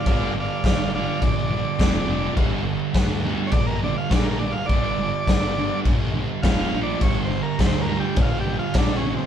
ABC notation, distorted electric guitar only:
X:1
M:4/4
L:1/8
Q:1/4=104
K:Gm
V:1 name="Distorted electric guitar" clef=bass
[G,,D,G,] [G,,D,] [G,,D,] [G,,D,G,] [G,,D,] [G,,D,] [F,,C,F,] [F,,C,F,] | [G,,D,G,] [G,,D,] [G,,D,] [G,,D,G,] [G,,D,] [G,,D,] [G,,D,G,] [G,,D,] | [G,,D,G,] [G,,D,] [G,,D,] [G,,D,G,] [G,,D,] [G,,D,] [F,,C,F,] [B,,F,B,] | [G,,D,G,] [G,,D,] [G,,D,] [G,,D,G,] [G,,D,] [G,,D,] [G,,D,G,] [G,,D,] |]